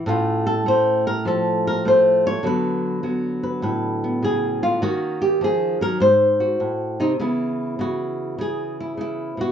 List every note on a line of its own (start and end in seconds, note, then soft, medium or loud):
0.06 2.41 A2 medium
0.06 0.66 A3 medium
0.06 2.42 C#4 medium
0.06 0.47 F4 medium
0.47 0.66 A4 medium
0.66 1.84 A3 medium
0.66 1.06 C5 medium
1.07 1.26 A#4 medium
1.25 2.41 F3 medium
1.25 1.66 A4 medium
1.67 1.86 A#4 medium
1.85 2.42 A3 medium
1.85 2.25 C5 medium
2.27 2.45 C#5 loud
2.43 4.22 D3 medium
2.43 3.03 F#3 soft
2.43 3.02 B3 soft
2.43 3.05 B4 medium
3.03 4.79 F#3 medium
3.03 4.02 B3 soft
3.43 3.62 B4 soft
3.62 4.79 A2 medium
3.62 4.22 B4 medium
4.04 4.80 B3 soft
4.23 4.62 C#3 medium
4.23 4.63 G#4 medium
4.62 4.81 D3 medium
4.62 4.82 F4 medium
4.82 5.98 D#3 medium
4.82 5.41 A#3 medium
4.82 5.99 C#4 medium
4.82 5.21 F#4 medium
5.22 5.41 G4 medium
5.41 5.80 F3 medium
5.41 5.82 G#4 medium
5.81 6.01 F#3 medium
5.81 6.01 A#4 medium
6.00 6.60 G#2 medium
6.00 7.00 C5 medium
6.40 7.00 F#4 soft
6.60 6.99 A2 medium
7.00 7.19 C3 medium
7.00 7.12 D#4 medium
7.19 7.78 C#3 medium
7.19 9.52 E3 soft
7.19 9.52 B3 soft
7.19 8.39 E4 medium
7.79 8.37 C#3 medium
7.79 8.39 F#4 medium
8.38 8.96 C#3 medium
8.38 9.39 G#4 medium
8.80 8.99 E4 medium
8.97 9.37 C#3 medium
8.97 9.52 E4 medium
9.37 9.52 B2 medium
9.37 9.52 F#4 medium